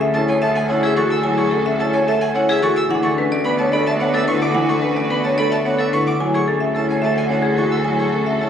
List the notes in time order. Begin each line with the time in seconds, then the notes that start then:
Already playing: D2 F#4 A4
0.01 E5
0.14 C#4 E4 A4 A5
0.28 C#5 G#5
0.41 A3 A4 E5 A5
0.55 F#5 G#5
0.69 C#4 E4 C#5 F#5
0.83 G#4 E5
0.97 E3 F#4 A4 C#6
1.10 G#5 E6
1.23 F#3 E4 G#5
1.37 G#4 C#6
1.51 A3 C#4 A4
1.66 E5
1.79 C#4 E4 A4 A5
1.93 C#5 G#5
2.06 A3 A4 E5 A5
2.21 F#5 G#5
2.34 C#4 E4 C#5 F#5
2.49 G#4 E5
2.62 E3 F#4 A4 C#6
2.76 G#5 E6
2.90 D2 E3 D4 F#4 B4 F#5
3.03 A4 C#6
3.17 A3 C#4 B4
3.32 D5
3.44 B3 D4 B4 B5
3.58 C#5 A5
3.72 A3 A4 D5 B5
3.86 E5 A5
3.99 B3 D4 C#5 F#5
4.13 A4 E5
4.27 D3 E4 B4 C#6
4.41 F#5 D6
4.54 E3 D4 F#5
4.69 A4 C#6
4.81 A3 C#4 B4
4.96 D5
5.09 B3 D4 B4 B5
5.24 C#5 A5
5.38 A3 A4 D5 B5
5.50 E5 A5
5.65 B3 D4 C#5 F#5
5.79 A4 E5
5.93 D3 E4 B4 C#6
6.07 F#5 D6
6.19 D2 F#3 E4 F#4 A4 G#5
6.34 G#4 C#6
6.48 A3 C#4 A4
6.60 E5
6.75 C#4 E4 A4 A5
6.89 C#5 G#5
7.02 A3 A4 E5 A5
7.16 F#5 G#5
7.29 C#4 E4 C#5 F#5
7.42 G#4
7.57 E3 F#4 A4 C#6
7.71 G#5 E6
7.85 F#3 E4 G#5
7.99 G#4 C#6
8.12 A3 C#4 A4
8.26 E5
8.39 C#4 E4 A4 A5